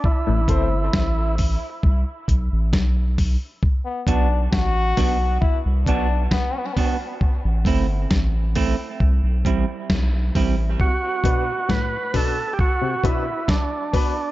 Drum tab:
HH |-x-o-x-o|-x-o-x-o|-o-o-x-o|-x-o-x-o|
SD |--o---o-|--oo--o-|--o---o-|--oo--o-|
BD |oooooooo|oooooooo|oooooooo|oooooooo|